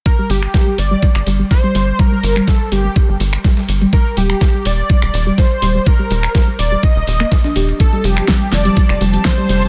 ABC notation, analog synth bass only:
X:1
M:4/4
L:1/16
Q:1/4=124
K:Gm
V:1 name="Analog synth bass" clef=bass
z2 G,,, z3 G,,, z2 G,,, G,,, z3 G,,, z | z2 G,,, z3 G,,, z2 G,,, G,,, z3 G,,, z | z2 E,,, z3 E,,, z2 E,,, E,,, z3 E,,, z | z2 E,,, z3 E,,, z2 E,,, E,,, z3 E,,, z |
z2 F,,, z3 F,,, z2 F,,, F,,, z3 F,,, z |]